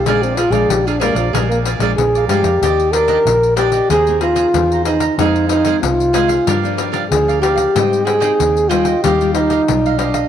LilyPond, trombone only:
\new Staff \with { instrumentName = "Trombone" } { \time 4/4 \key ees \major \tempo 4 = 93 aes'16 c'16 f'16 aes'16 g'16 d'16 bes16 f16 g16 bes16 r8 aes'8 g'8~ | g'8 bes'4 g'8 aes'8 f'4 ees'8 | ees'8 ees'8 f'4. r8 aes'8 g'8~ | g'8 aes'4 f'8 g'8 ees'4 d'8 | }